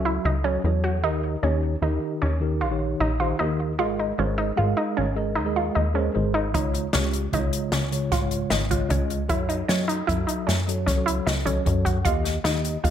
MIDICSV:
0, 0, Header, 1, 5, 480
1, 0, Start_track
1, 0, Tempo, 393443
1, 1260, Time_signature, 7, 2, 24, 8
1, 15743, End_track
2, 0, Start_track
2, 0, Title_t, "Tine electric piano"
2, 0, Program_c, 0, 4
2, 0, Note_on_c, 0, 54, 67
2, 0, Note_on_c, 0, 66, 66
2, 0, Note_on_c, 0, 69, 61
2, 0, Note_on_c, 0, 76, 79
2, 419, Note_off_c, 0, 54, 0
2, 421, Note_off_c, 0, 66, 0
2, 425, Note_off_c, 0, 69, 0
2, 430, Note_off_c, 0, 76, 0
2, 538, Note_on_c, 0, 54, 77
2, 549, Note_on_c, 0, 66, 70
2, 553, Note_on_c, 0, 69, 65
2, 558, Note_on_c, 0, 73, 86
2, 731, Note_off_c, 0, 54, 0
2, 737, Note_off_c, 0, 66, 0
2, 738, Note_off_c, 0, 69, 0
2, 741, Note_off_c, 0, 73, 0
2, 783, Note_on_c, 0, 54, 67
2, 793, Note_on_c, 0, 66, 61
2, 793, Note_on_c, 0, 69, 62
2, 803, Note_on_c, 0, 73, 76
2, 1166, Note_off_c, 0, 54, 0
2, 1172, Note_off_c, 0, 66, 0
2, 1172, Note_off_c, 0, 69, 0
2, 1177, Note_off_c, 0, 73, 0
2, 1260, Note_on_c, 0, 51, 85
2, 1266, Note_on_c, 0, 63, 72
2, 1269, Note_on_c, 0, 67, 73
2, 1273, Note_on_c, 0, 70, 84
2, 1645, Note_off_c, 0, 51, 0
2, 1649, Note_off_c, 0, 63, 0
2, 1650, Note_off_c, 0, 67, 0
2, 1652, Note_off_c, 0, 70, 0
2, 1738, Note_on_c, 0, 51, 72
2, 1743, Note_on_c, 0, 63, 65
2, 1748, Note_on_c, 0, 67, 65
2, 1756, Note_on_c, 0, 73, 70
2, 2125, Note_off_c, 0, 51, 0
2, 2128, Note_off_c, 0, 63, 0
2, 2130, Note_off_c, 0, 67, 0
2, 2134, Note_off_c, 0, 73, 0
2, 2217, Note_on_c, 0, 51, 80
2, 2224, Note_on_c, 0, 63, 75
2, 2226, Note_on_c, 0, 67, 74
2, 2230, Note_on_c, 0, 70, 88
2, 2798, Note_off_c, 0, 51, 0
2, 2801, Note_off_c, 0, 63, 0
2, 2802, Note_off_c, 0, 67, 0
2, 2804, Note_off_c, 0, 70, 0
2, 2929, Note_on_c, 0, 51, 73
2, 2939, Note_on_c, 0, 63, 64
2, 2944, Note_on_c, 0, 67, 67
2, 2953, Note_on_c, 0, 70, 77
2, 3225, Note_off_c, 0, 51, 0
2, 3231, Note_off_c, 0, 63, 0
2, 3233, Note_off_c, 0, 67, 0
2, 3238, Note_off_c, 0, 70, 0
2, 3304, Note_on_c, 0, 51, 67
2, 3309, Note_on_c, 0, 63, 64
2, 3312, Note_on_c, 0, 67, 63
2, 3321, Note_on_c, 0, 73, 75
2, 3786, Note_off_c, 0, 51, 0
2, 3788, Note_off_c, 0, 63, 0
2, 3790, Note_off_c, 0, 67, 0
2, 3794, Note_off_c, 0, 73, 0
2, 3904, Note_on_c, 0, 51, 77
2, 3909, Note_on_c, 0, 63, 67
2, 3909, Note_on_c, 0, 67, 67
2, 3918, Note_on_c, 0, 72, 86
2, 4097, Note_off_c, 0, 51, 0
2, 4100, Note_off_c, 0, 63, 0
2, 4100, Note_off_c, 0, 67, 0
2, 4104, Note_off_c, 0, 72, 0
2, 4151, Note_on_c, 0, 51, 67
2, 4152, Note_on_c, 0, 63, 61
2, 4155, Note_on_c, 0, 67, 59
2, 4163, Note_on_c, 0, 70, 76
2, 4533, Note_off_c, 0, 51, 0
2, 4534, Note_off_c, 0, 63, 0
2, 4535, Note_off_c, 0, 67, 0
2, 4539, Note_off_c, 0, 70, 0
2, 4626, Note_on_c, 0, 56, 81
2, 4628, Note_on_c, 0, 68, 77
2, 4631, Note_on_c, 0, 70, 78
2, 4634, Note_on_c, 0, 75, 87
2, 5011, Note_off_c, 0, 56, 0
2, 5012, Note_off_c, 0, 68, 0
2, 5013, Note_off_c, 0, 70, 0
2, 5015, Note_off_c, 0, 75, 0
2, 5101, Note_on_c, 0, 56, 67
2, 5107, Note_on_c, 0, 68, 64
2, 5111, Note_on_c, 0, 70, 60
2, 5118, Note_on_c, 0, 72, 75
2, 5489, Note_off_c, 0, 56, 0
2, 5491, Note_off_c, 0, 68, 0
2, 5493, Note_off_c, 0, 70, 0
2, 5497, Note_off_c, 0, 72, 0
2, 5567, Note_on_c, 0, 56, 75
2, 5574, Note_on_c, 0, 68, 72
2, 5575, Note_on_c, 0, 70, 70
2, 5579, Note_on_c, 0, 77, 94
2, 6154, Note_off_c, 0, 56, 0
2, 6157, Note_off_c, 0, 68, 0
2, 6157, Note_off_c, 0, 70, 0
2, 6160, Note_off_c, 0, 77, 0
2, 6291, Note_on_c, 0, 56, 64
2, 6295, Note_on_c, 0, 68, 67
2, 6301, Note_on_c, 0, 70, 65
2, 6302, Note_on_c, 0, 75, 75
2, 6587, Note_off_c, 0, 56, 0
2, 6589, Note_off_c, 0, 68, 0
2, 6592, Note_off_c, 0, 70, 0
2, 6593, Note_off_c, 0, 75, 0
2, 6651, Note_on_c, 0, 56, 71
2, 6657, Note_on_c, 0, 68, 59
2, 6662, Note_on_c, 0, 70, 60
2, 6664, Note_on_c, 0, 75, 76
2, 7139, Note_off_c, 0, 56, 0
2, 7142, Note_off_c, 0, 68, 0
2, 7145, Note_off_c, 0, 70, 0
2, 7146, Note_off_c, 0, 75, 0
2, 7245, Note_on_c, 0, 56, 70
2, 7249, Note_on_c, 0, 68, 67
2, 7255, Note_on_c, 0, 70, 67
2, 7258, Note_on_c, 0, 72, 74
2, 7448, Note_off_c, 0, 56, 0
2, 7450, Note_off_c, 0, 68, 0
2, 7453, Note_off_c, 0, 70, 0
2, 7455, Note_off_c, 0, 72, 0
2, 7484, Note_on_c, 0, 56, 66
2, 7491, Note_on_c, 0, 68, 57
2, 7498, Note_on_c, 0, 70, 61
2, 7502, Note_on_c, 0, 72, 71
2, 7880, Note_off_c, 0, 56, 0
2, 7883, Note_off_c, 0, 68, 0
2, 7887, Note_off_c, 0, 70, 0
2, 7889, Note_off_c, 0, 72, 0
2, 7970, Note_on_c, 0, 49, 75
2, 7978, Note_on_c, 0, 56, 70
2, 7983, Note_on_c, 0, 65, 75
2, 7990, Note_on_c, 0, 73, 86
2, 8363, Note_off_c, 0, 49, 0
2, 8367, Note_off_c, 0, 56, 0
2, 8369, Note_off_c, 0, 65, 0
2, 8372, Note_off_c, 0, 73, 0
2, 8454, Note_on_c, 0, 49, 66
2, 8459, Note_on_c, 0, 56, 62
2, 8461, Note_on_c, 0, 65, 62
2, 8470, Note_on_c, 0, 67, 72
2, 8845, Note_off_c, 0, 49, 0
2, 8847, Note_off_c, 0, 56, 0
2, 8848, Note_off_c, 0, 65, 0
2, 8852, Note_off_c, 0, 67, 0
2, 8932, Note_on_c, 0, 49, 84
2, 8936, Note_on_c, 0, 56, 69
2, 8943, Note_on_c, 0, 65, 75
2, 8950, Note_on_c, 0, 73, 83
2, 9515, Note_off_c, 0, 49, 0
2, 9517, Note_off_c, 0, 56, 0
2, 9521, Note_off_c, 0, 65, 0
2, 9524, Note_off_c, 0, 73, 0
2, 9657, Note_on_c, 0, 49, 73
2, 9662, Note_on_c, 0, 56, 61
2, 9662, Note_on_c, 0, 65, 59
2, 9670, Note_on_c, 0, 73, 76
2, 9949, Note_off_c, 0, 49, 0
2, 9952, Note_off_c, 0, 56, 0
2, 9952, Note_off_c, 0, 65, 0
2, 9956, Note_off_c, 0, 73, 0
2, 10014, Note_on_c, 0, 49, 68
2, 10019, Note_on_c, 0, 56, 62
2, 10023, Note_on_c, 0, 65, 63
2, 10026, Note_on_c, 0, 73, 80
2, 10500, Note_off_c, 0, 49, 0
2, 10502, Note_off_c, 0, 56, 0
2, 10505, Note_off_c, 0, 65, 0
2, 10506, Note_off_c, 0, 73, 0
2, 10607, Note_on_c, 0, 56, 66
2, 10608, Note_on_c, 0, 49, 71
2, 10615, Note_on_c, 0, 65, 70
2, 10621, Note_on_c, 0, 73, 83
2, 10808, Note_off_c, 0, 56, 0
2, 10809, Note_off_c, 0, 49, 0
2, 10812, Note_off_c, 0, 65, 0
2, 10815, Note_off_c, 0, 73, 0
2, 10839, Note_on_c, 0, 49, 68
2, 10842, Note_on_c, 0, 65, 57
2, 10844, Note_on_c, 0, 56, 65
2, 10849, Note_on_c, 0, 75, 81
2, 11236, Note_off_c, 0, 49, 0
2, 11238, Note_off_c, 0, 56, 0
2, 11238, Note_off_c, 0, 65, 0
2, 11241, Note_off_c, 0, 75, 0
2, 11324, Note_on_c, 0, 54, 78
2, 11327, Note_on_c, 0, 66, 76
2, 11329, Note_on_c, 0, 69, 73
2, 11335, Note_on_c, 0, 73, 93
2, 11718, Note_off_c, 0, 54, 0
2, 11720, Note_off_c, 0, 66, 0
2, 11721, Note_off_c, 0, 69, 0
2, 11724, Note_off_c, 0, 73, 0
2, 11811, Note_on_c, 0, 54, 67
2, 11820, Note_on_c, 0, 66, 60
2, 11824, Note_on_c, 0, 69, 60
2, 11828, Note_on_c, 0, 75, 77
2, 12202, Note_off_c, 0, 54, 0
2, 12206, Note_off_c, 0, 66, 0
2, 12208, Note_off_c, 0, 69, 0
2, 12210, Note_off_c, 0, 75, 0
2, 12294, Note_on_c, 0, 54, 84
2, 12294, Note_on_c, 0, 66, 74
2, 12300, Note_on_c, 0, 69, 72
2, 12309, Note_on_c, 0, 76, 90
2, 12875, Note_off_c, 0, 54, 0
2, 12875, Note_off_c, 0, 66, 0
2, 12878, Note_off_c, 0, 69, 0
2, 12883, Note_off_c, 0, 76, 0
2, 13024, Note_on_c, 0, 54, 77
2, 13029, Note_on_c, 0, 66, 70
2, 13034, Note_on_c, 0, 73, 75
2, 13035, Note_on_c, 0, 69, 66
2, 13312, Note_off_c, 0, 54, 0
2, 13314, Note_off_c, 0, 66, 0
2, 13317, Note_off_c, 0, 69, 0
2, 13317, Note_off_c, 0, 73, 0
2, 13373, Note_on_c, 0, 54, 69
2, 13381, Note_on_c, 0, 66, 64
2, 13381, Note_on_c, 0, 69, 61
2, 13384, Note_on_c, 0, 73, 75
2, 13858, Note_off_c, 0, 54, 0
2, 13862, Note_off_c, 0, 66, 0
2, 13862, Note_off_c, 0, 69, 0
2, 13863, Note_off_c, 0, 73, 0
2, 13971, Note_on_c, 0, 66, 64
2, 13973, Note_on_c, 0, 54, 78
2, 13983, Note_on_c, 0, 69, 76
2, 13985, Note_on_c, 0, 73, 84
2, 14169, Note_off_c, 0, 54, 0
2, 14169, Note_off_c, 0, 66, 0
2, 14174, Note_off_c, 0, 69, 0
2, 14175, Note_off_c, 0, 73, 0
2, 14215, Note_on_c, 0, 54, 68
2, 14216, Note_on_c, 0, 66, 61
2, 14225, Note_on_c, 0, 69, 63
2, 14230, Note_on_c, 0, 73, 76
2, 14602, Note_off_c, 0, 54, 0
2, 14603, Note_off_c, 0, 66, 0
2, 14607, Note_off_c, 0, 69, 0
2, 14610, Note_off_c, 0, 73, 0
2, 14695, Note_on_c, 0, 51, 81
2, 14703, Note_on_c, 0, 58, 75
2, 14707, Note_on_c, 0, 67, 75
2, 14713, Note_on_c, 0, 75, 96
2, 15082, Note_off_c, 0, 51, 0
2, 15086, Note_off_c, 0, 58, 0
2, 15088, Note_off_c, 0, 67, 0
2, 15091, Note_off_c, 0, 75, 0
2, 15180, Note_on_c, 0, 51, 67
2, 15186, Note_on_c, 0, 58, 59
2, 15194, Note_on_c, 0, 67, 65
2, 15198, Note_on_c, 0, 75, 74
2, 15564, Note_off_c, 0, 51, 0
2, 15567, Note_off_c, 0, 58, 0
2, 15571, Note_off_c, 0, 67, 0
2, 15572, Note_off_c, 0, 75, 0
2, 15657, Note_on_c, 0, 51, 84
2, 15669, Note_on_c, 0, 58, 72
2, 15672, Note_on_c, 0, 67, 78
2, 15673, Note_on_c, 0, 75, 87
2, 15743, Note_off_c, 0, 51, 0
2, 15743, Note_off_c, 0, 58, 0
2, 15743, Note_off_c, 0, 67, 0
2, 15743, Note_off_c, 0, 75, 0
2, 15743, End_track
3, 0, Start_track
3, 0, Title_t, "Synth arpeggio sound"
3, 0, Program_c, 1, 84
3, 65, Note_on_c, 1, 64, 75
3, 227, Note_off_c, 1, 64, 0
3, 309, Note_on_c, 1, 63, 79
3, 470, Note_off_c, 1, 63, 0
3, 540, Note_on_c, 1, 61, 73
3, 868, Note_off_c, 1, 61, 0
3, 1022, Note_on_c, 1, 66, 70
3, 1186, Note_off_c, 1, 66, 0
3, 1264, Note_on_c, 1, 63, 83
3, 1591, Note_off_c, 1, 63, 0
3, 1744, Note_on_c, 1, 61, 83
3, 2072, Note_off_c, 1, 61, 0
3, 2226, Note_on_c, 1, 63, 72
3, 2553, Note_off_c, 1, 63, 0
3, 2705, Note_on_c, 1, 61, 79
3, 3033, Note_off_c, 1, 61, 0
3, 3185, Note_on_c, 1, 65, 71
3, 3513, Note_off_c, 1, 65, 0
3, 3665, Note_on_c, 1, 63, 80
3, 3830, Note_off_c, 1, 63, 0
3, 3902, Note_on_c, 1, 65, 66
3, 4068, Note_off_c, 1, 65, 0
3, 4138, Note_on_c, 1, 63, 81
3, 4469, Note_off_c, 1, 63, 0
3, 4623, Note_on_c, 1, 65, 82
3, 4788, Note_off_c, 1, 65, 0
3, 4873, Note_on_c, 1, 63, 70
3, 5035, Note_off_c, 1, 63, 0
3, 5110, Note_on_c, 1, 61, 78
3, 5273, Note_off_c, 1, 61, 0
3, 5342, Note_on_c, 1, 63, 77
3, 5508, Note_off_c, 1, 63, 0
3, 5580, Note_on_c, 1, 65, 77
3, 5746, Note_off_c, 1, 65, 0
3, 5818, Note_on_c, 1, 63, 75
3, 5985, Note_off_c, 1, 63, 0
3, 6062, Note_on_c, 1, 61, 79
3, 6392, Note_off_c, 1, 61, 0
3, 6532, Note_on_c, 1, 63, 67
3, 6701, Note_off_c, 1, 63, 0
3, 6786, Note_on_c, 1, 65, 69
3, 6950, Note_off_c, 1, 65, 0
3, 7019, Note_on_c, 1, 63, 74
3, 7186, Note_off_c, 1, 63, 0
3, 7259, Note_on_c, 1, 61, 71
3, 7589, Note_off_c, 1, 61, 0
3, 7737, Note_on_c, 1, 63, 76
3, 7904, Note_off_c, 1, 63, 0
3, 7982, Note_on_c, 1, 63, 84
3, 8311, Note_off_c, 1, 63, 0
3, 8460, Note_on_c, 1, 61, 87
3, 8790, Note_off_c, 1, 61, 0
3, 8951, Note_on_c, 1, 63, 72
3, 9277, Note_off_c, 1, 63, 0
3, 9428, Note_on_c, 1, 61, 78
3, 9755, Note_off_c, 1, 61, 0
3, 9903, Note_on_c, 1, 65, 71
3, 10231, Note_off_c, 1, 65, 0
3, 10372, Note_on_c, 1, 63, 80
3, 10541, Note_off_c, 1, 63, 0
3, 10624, Note_on_c, 1, 65, 73
3, 10788, Note_off_c, 1, 65, 0
3, 10863, Note_on_c, 1, 61, 78
3, 11191, Note_off_c, 1, 61, 0
3, 11339, Note_on_c, 1, 64, 88
3, 11505, Note_off_c, 1, 64, 0
3, 11575, Note_on_c, 1, 63, 71
3, 11742, Note_off_c, 1, 63, 0
3, 11815, Note_on_c, 1, 61, 83
3, 11982, Note_off_c, 1, 61, 0
3, 12053, Note_on_c, 1, 63, 77
3, 12220, Note_off_c, 1, 63, 0
3, 12289, Note_on_c, 1, 64, 80
3, 12458, Note_off_c, 1, 64, 0
3, 12529, Note_on_c, 1, 63, 71
3, 12698, Note_off_c, 1, 63, 0
3, 12771, Note_on_c, 1, 61, 77
3, 13103, Note_off_c, 1, 61, 0
3, 13255, Note_on_c, 1, 61, 73
3, 13422, Note_off_c, 1, 61, 0
3, 13491, Note_on_c, 1, 64, 79
3, 13659, Note_off_c, 1, 64, 0
3, 13744, Note_on_c, 1, 63, 82
3, 13907, Note_off_c, 1, 63, 0
3, 13975, Note_on_c, 1, 61, 78
3, 14305, Note_off_c, 1, 61, 0
3, 14457, Note_on_c, 1, 66, 68
3, 14622, Note_off_c, 1, 66, 0
3, 14697, Note_on_c, 1, 65, 88
3, 15026, Note_off_c, 1, 65, 0
3, 15180, Note_on_c, 1, 63, 75
3, 15507, Note_off_c, 1, 63, 0
3, 15663, Note_on_c, 1, 65, 74
3, 15743, Note_off_c, 1, 65, 0
3, 15743, End_track
4, 0, Start_track
4, 0, Title_t, "Analog synth bass"
4, 0, Program_c, 2, 38
4, 0, Note_on_c, 2, 37, 92
4, 235, Note_off_c, 2, 37, 0
4, 306, Note_on_c, 2, 37, 80
4, 714, Note_off_c, 2, 37, 0
4, 784, Note_on_c, 2, 40, 98
4, 1261, Note_on_c, 2, 39, 82
4, 1279, Note_off_c, 2, 40, 0
4, 1671, Note_off_c, 2, 39, 0
4, 1747, Note_on_c, 2, 39, 85
4, 2156, Note_off_c, 2, 39, 0
4, 2220, Note_on_c, 2, 39, 93
4, 2426, Note_off_c, 2, 39, 0
4, 2716, Note_on_c, 2, 39, 85
4, 3196, Note_on_c, 2, 34, 91
4, 3214, Note_off_c, 2, 39, 0
4, 3602, Note_off_c, 2, 34, 0
4, 3670, Note_on_c, 2, 34, 84
4, 4078, Note_off_c, 2, 34, 0
4, 4150, Note_on_c, 2, 39, 103
4, 4631, Note_on_c, 2, 32, 90
4, 4649, Note_off_c, 2, 39, 0
4, 5039, Note_off_c, 2, 32, 0
4, 5110, Note_on_c, 2, 32, 92
4, 5518, Note_off_c, 2, 32, 0
4, 5594, Note_on_c, 2, 32, 91
4, 5796, Note_off_c, 2, 32, 0
4, 6077, Note_on_c, 2, 32, 79
4, 6557, Note_on_c, 2, 39, 88
4, 6575, Note_off_c, 2, 32, 0
4, 6962, Note_off_c, 2, 39, 0
4, 7033, Note_on_c, 2, 39, 80
4, 7440, Note_off_c, 2, 39, 0
4, 7514, Note_on_c, 2, 32, 94
4, 7990, Note_on_c, 2, 37, 83
4, 8008, Note_off_c, 2, 32, 0
4, 8398, Note_off_c, 2, 37, 0
4, 8478, Note_on_c, 2, 37, 88
4, 8883, Note_off_c, 2, 37, 0
4, 8955, Note_on_c, 2, 37, 90
4, 9156, Note_off_c, 2, 37, 0
4, 9419, Note_on_c, 2, 37, 78
4, 9910, Note_on_c, 2, 32, 92
4, 9928, Note_off_c, 2, 37, 0
4, 10318, Note_off_c, 2, 32, 0
4, 10380, Note_on_c, 2, 32, 82
4, 10792, Note_off_c, 2, 32, 0
4, 10867, Note_on_c, 2, 37, 98
4, 11350, Note_on_c, 2, 42, 87
4, 11368, Note_off_c, 2, 37, 0
4, 11757, Note_off_c, 2, 42, 0
4, 11821, Note_on_c, 2, 42, 91
4, 12232, Note_off_c, 2, 42, 0
4, 12310, Note_on_c, 2, 42, 96
4, 12512, Note_off_c, 2, 42, 0
4, 12790, Note_on_c, 2, 42, 78
4, 13273, Note_on_c, 2, 37, 93
4, 13291, Note_off_c, 2, 42, 0
4, 13678, Note_off_c, 2, 37, 0
4, 13747, Note_on_c, 2, 37, 83
4, 14155, Note_off_c, 2, 37, 0
4, 14235, Note_on_c, 2, 42, 99
4, 14713, Note_on_c, 2, 39, 85
4, 14731, Note_off_c, 2, 42, 0
4, 15117, Note_off_c, 2, 39, 0
4, 15182, Note_on_c, 2, 39, 92
4, 15590, Note_off_c, 2, 39, 0
4, 15671, Note_on_c, 2, 39, 99
4, 15743, Note_off_c, 2, 39, 0
4, 15743, End_track
5, 0, Start_track
5, 0, Title_t, "Drums"
5, 7986, Note_on_c, 9, 42, 68
5, 7987, Note_on_c, 9, 36, 92
5, 8108, Note_off_c, 9, 42, 0
5, 8109, Note_off_c, 9, 36, 0
5, 8229, Note_on_c, 9, 42, 46
5, 8351, Note_off_c, 9, 42, 0
5, 8456, Note_on_c, 9, 38, 92
5, 8456, Note_on_c, 9, 42, 75
5, 8578, Note_off_c, 9, 38, 0
5, 8578, Note_off_c, 9, 42, 0
5, 8703, Note_on_c, 9, 42, 54
5, 8825, Note_off_c, 9, 42, 0
5, 8945, Note_on_c, 9, 42, 69
5, 8949, Note_on_c, 9, 36, 86
5, 9067, Note_off_c, 9, 42, 0
5, 9071, Note_off_c, 9, 36, 0
5, 9185, Note_on_c, 9, 42, 56
5, 9307, Note_off_c, 9, 42, 0
5, 9418, Note_on_c, 9, 38, 98
5, 9418, Note_on_c, 9, 42, 73
5, 9540, Note_off_c, 9, 38, 0
5, 9540, Note_off_c, 9, 42, 0
5, 9666, Note_on_c, 9, 42, 57
5, 9788, Note_off_c, 9, 42, 0
5, 9904, Note_on_c, 9, 38, 30
5, 9904, Note_on_c, 9, 42, 64
5, 9906, Note_on_c, 9, 36, 90
5, 10026, Note_off_c, 9, 38, 0
5, 10026, Note_off_c, 9, 42, 0
5, 10028, Note_off_c, 9, 36, 0
5, 10139, Note_on_c, 9, 42, 49
5, 10261, Note_off_c, 9, 42, 0
5, 10375, Note_on_c, 9, 38, 87
5, 10375, Note_on_c, 9, 42, 62
5, 10497, Note_off_c, 9, 38, 0
5, 10497, Note_off_c, 9, 42, 0
5, 10626, Note_on_c, 9, 36, 63
5, 10626, Note_on_c, 9, 42, 53
5, 10748, Note_off_c, 9, 36, 0
5, 10748, Note_off_c, 9, 42, 0
5, 10861, Note_on_c, 9, 42, 69
5, 10866, Note_on_c, 9, 36, 84
5, 10983, Note_off_c, 9, 42, 0
5, 10988, Note_off_c, 9, 36, 0
5, 11105, Note_on_c, 9, 42, 49
5, 11227, Note_off_c, 9, 42, 0
5, 11339, Note_on_c, 9, 42, 66
5, 11345, Note_on_c, 9, 36, 92
5, 11461, Note_off_c, 9, 42, 0
5, 11467, Note_off_c, 9, 36, 0
5, 11585, Note_on_c, 9, 42, 51
5, 11707, Note_off_c, 9, 42, 0
5, 11823, Note_on_c, 9, 38, 93
5, 11823, Note_on_c, 9, 42, 72
5, 11945, Note_off_c, 9, 38, 0
5, 11945, Note_off_c, 9, 42, 0
5, 12069, Note_on_c, 9, 42, 55
5, 12191, Note_off_c, 9, 42, 0
5, 12308, Note_on_c, 9, 36, 89
5, 12313, Note_on_c, 9, 42, 68
5, 12430, Note_off_c, 9, 36, 0
5, 12435, Note_off_c, 9, 42, 0
5, 12548, Note_on_c, 9, 42, 60
5, 12670, Note_off_c, 9, 42, 0
5, 12795, Note_on_c, 9, 38, 88
5, 12795, Note_on_c, 9, 42, 68
5, 12917, Note_off_c, 9, 38, 0
5, 12917, Note_off_c, 9, 42, 0
5, 13038, Note_on_c, 9, 42, 60
5, 13160, Note_off_c, 9, 42, 0
5, 13270, Note_on_c, 9, 36, 87
5, 13270, Note_on_c, 9, 38, 28
5, 13270, Note_on_c, 9, 42, 72
5, 13392, Note_off_c, 9, 36, 0
5, 13392, Note_off_c, 9, 38, 0
5, 13392, Note_off_c, 9, 42, 0
5, 13514, Note_on_c, 9, 42, 52
5, 13636, Note_off_c, 9, 42, 0
5, 13753, Note_on_c, 9, 38, 90
5, 13753, Note_on_c, 9, 42, 68
5, 13875, Note_off_c, 9, 38, 0
5, 13875, Note_off_c, 9, 42, 0
5, 13988, Note_on_c, 9, 42, 50
5, 13989, Note_on_c, 9, 36, 64
5, 14110, Note_off_c, 9, 42, 0
5, 14111, Note_off_c, 9, 36, 0
5, 14229, Note_on_c, 9, 36, 82
5, 14229, Note_on_c, 9, 42, 66
5, 14351, Note_off_c, 9, 36, 0
5, 14351, Note_off_c, 9, 42, 0
5, 14468, Note_on_c, 9, 36, 67
5, 14471, Note_on_c, 9, 42, 51
5, 14590, Note_off_c, 9, 36, 0
5, 14593, Note_off_c, 9, 42, 0
5, 14704, Note_on_c, 9, 42, 71
5, 14709, Note_on_c, 9, 36, 85
5, 14826, Note_off_c, 9, 42, 0
5, 14831, Note_off_c, 9, 36, 0
5, 14950, Note_on_c, 9, 38, 30
5, 14950, Note_on_c, 9, 42, 49
5, 15072, Note_off_c, 9, 38, 0
5, 15072, Note_off_c, 9, 42, 0
5, 15187, Note_on_c, 9, 38, 94
5, 15187, Note_on_c, 9, 42, 72
5, 15309, Note_off_c, 9, 38, 0
5, 15309, Note_off_c, 9, 42, 0
5, 15429, Note_on_c, 9, 42, 54
5, 15551, Note_off_c, 9, 42, 0
5, 15669, Note_on_c, 9, 36, 89
5, 15674, Note_on_c, 9, 42, 65
5, 15743, Note_off_c, 9, 36, 0
5, 15743, Note_off_c, 9, 42, 0
5, 15743, End_track
0, 0, End_of_file